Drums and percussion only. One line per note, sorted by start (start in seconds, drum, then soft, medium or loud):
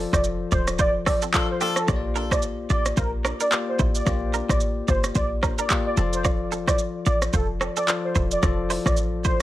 0.13 kick loud
0.13 cross-stick loud
0.13 shaker medium
0.24 shaker medium
0.51 kick loud
0.51 shaker medium
0.67 cross-stick medium
0.67 shaker medium
0.79 kick medium
0.79 shaker medium
1.06 kick medium
1.06 cross-stick loud
1.06 open hi-hat soft
1.06 shaker soft
1.22 shaker medium
1.34 kick medium
1.34 clap loud
1.34 shaker medium
1.61 shaker medium
1.76 cross-stick medium
1.76 shaker medium
1.88 kick loud
1.88 cross-stick medium
1.88 shaker medium
2.16 shaker medium
2.31 kick loud
2.31 cross-stick loud
2.31 shaker medium
2.42 shaker medium
2.70 shaker medium
2.86 cross-stick medium
2.86 shaker medium
2.97 kick medium
2.97 shaker medium
3.25 cross-stick loud
3.25 shaker soft
3.40 shaker medium
3.52 clap loud
3.52 shaker medium
3.79 kick loud
3.79 shaker medium
3.95 shaker medium
4.06 kick loud
4.06 cross-stick medium
4.06 shaker medium
4.34 shaker medium
4.49 kick loud
4.49 cross-stick loud
4.49 shaker medium
4.60 shaker medium
4.88 kick loud
4.88 shaker medium
5.04 cross-stick medium
5.04 shaker medium
5.15 kick medium
5.15 shaker medium
5.43 kick medium
5.43 cross-stick loud
5.43 shaker soft
5.58 shaker medium
5.70 kick medium
5.70 clap loud
5.70 shaker medium
5.97 shaker medium
6.13 shaker medium
6.25 kick loud
6.25 cross-stick medium
6.25 shaker medium
6.52 shaker medium
6.67 kick loud
6.67 cross-stick loud
6.67 shaker medium
6.79 shaker medium
7.06 shaker medium
7.22 cross-stick medium
7.22 shaker medium
7.33 kick loud
7.33 shaker medium
7.61 cross-stick loud
7.61 shaker soft
7.77 shaker medium
7.88 clap loud
7.88 shaker medium
8.15 kick loud
8.15 shaker medium
8.31 shaker medium
8.43 kick loud
8.43 cross-stick medium
8.43 shaker medium
8.70 open hi-hat medium
8.70 shaker medium
8.86 kick loud
8.86 cross-stick loud
8.86 shaker medium
8.97 shaker medium
9.24 kick loud
9.24 shaker medium